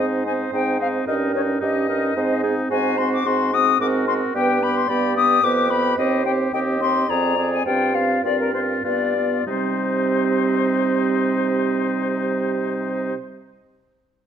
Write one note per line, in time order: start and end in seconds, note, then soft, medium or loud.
0.00 0.46 G#2 soft
0.00 0.25 C4 soft
0.00 0.25 D#4 soft
0.00 1.05 C5 medium
0.26 0.53 C4 soft
0.26 0.52 D#4 soft
0.26 0.32 G#5 medium
0.53 1.01 G#2 medium
0.53 0.80 C4 soft
0.53 0.79 D#4 soft
0.53 0.80 G5 medium
0.80 1.07 C4 soft
0.80 1.06 D#4 soft
0.80 0.87 F5 medium
1.07 1.55 G2 soft
1.07 1.34 C#4 soft
1.07 1.33 D#4 soft
1.07 1.63 A#4 medium
1.07 1.14 D#5 medium
1.34 1.62 C#4 soft
1.34 1.60 D#4 soft
1.34 1.41 C#5 medium
1.61 2.10 G2 medium
1.61 1.89 C#4 soft
1.61 1.88 D#4 soft
1.61 1.88 G4 soft
1.61 2.41 D#5 medium
1.89 2.17 C#4 soft
1.89 2.15 D#4 soft
1.89 2.18 A#4 soft
2.15 2.64 G#2 medium
2.15 2.43 C4 soft
2.15 2.43 D#4 soft
2.15 2.43 C5 medium
2.43 2.71 C4 soft
2.43 2.70 D#4 soft
2.43 2.55 G#4 soft
2.70 3.19 G#2 medium
2.70 2.98 C4 soft
2.70 2.97 F#4 soft
2.70 3.50 C5 medium
2.70 2.99 G#5 medium
2.98 3.25 C4 soft
2.98 3.25 F#4 soft
2.98 3.11 C6 medium
3.13 3.28 D6 medium
3.25 3.73 G#2 medium
3.25 3.52 C4 soft
3.25 3.52 F#4 soft
3.25 3.55 C6 medium
3.53 3.79 C4 soft
3.53 3.79 F#4 soft
3.53 3.80 D#6 medium
3.79 4.20 G#2 medium
3.79 4.07 C4 soft
3.79 4.07 F#4 soft
3.79 4.35 A#4 medium
3.79 3.86 D6 medium
4.07 4.34 C4 soft
4.07 4.34 F#4 soft
4.07 4.13 C6 medium
4.34 4.82 G2 medium
4.34 4.61 B3 medium
4.34 4.61 G4 medium
4.34 4.90 B4 medium
4.34 4.64 G5 medium
4.61 4.88 B3 soft
4.61 4.88 G4 soft
4.61 4.78 B5 medium
4.76 4.90 C6 medium
4.88 5.37 G2 medium
4.88 5.16 B3 soft
4.88 5.15 G4 medium
4.88 5.43 D5 medium
4.88 5.15 B5 medium
5.16 5.42 B3 soft
5.16 5.43 G4 soft
5.16 5.45 D#6 medium
5.43 5.92 F2 medium
5.43 5.70 B3 soft
5.43 5.70 G4 soft
5.43 6.00 B4 medium
5.43 5.71 D6 medium
5.70 5.97 B3 soft
5.70 5.98 G4 soft
5.70 5.97 B5 medium
5.97 6.47 D#2 medium
5.97 6.25 C4 medium
5.97 6.25 G4 soft
5.97 6.53 C5 medium
5.97 6.24 D#5 medium
6.25 6.52 C4 soft
6.25 6.53 G4 soft
6.25 6.31 G5 medium
6.53 7.03 D#2 medium
6.53 6.80 C4 soft
6.53 6.81 G4 soft
6.53 7.10 D#5 medium
6.53 6.59 G5 medium
6.81 7.08 C4 soft
6.81 7.09 G4 soft
6.81 7.11 C6 medium
7.08 7.59 F2 medium
7.08 7.36 C4 soft
7.08 7.37 G#4 soft
7.08 7.65 D5 medium
7.08 7.52 A#5 medium
7.37 7.65 C4 soft
7.37 7.65 G#4 soft
7.52 7.65 G#5 medium
7.65 8.17 G2 medium
7.65 7.94 C4 soft
7.65 7.94 F4 soft
7.65 8.25 C5 medium
7.65 7.96 G5 medium
7.94 8.23 C4 soft
7.94 8.23 F4 soft
7.94 8.23 F5 medium
8.24 8.77 G2 soft
8.24 8.53 C4 soft
8.24 8.53 F4 soft
8.24 8.86 A#4 soft
8.24 8.38 D5 medium
8.40 8.53 A#4 soft
8.53 8.83 C4 soft
8.53 8.84 F4 soft
8.53 8.60 C5 medium
8.84 9.40 G2 soft
8.84 9.15 B3 soft
8.84 9.15 F4 soft
8.84 9.15 B4 soft
8.84 9.46 D5 medium
9.16 9.46 B3 soft
9.16 9.46 F4 soft
9.47 13.15 C3 soft
9.47 13.14 G3 soft
9.47 13.14 C4 soft
9.47 13.14 D#4 soft
9.47 13.15 C5 medium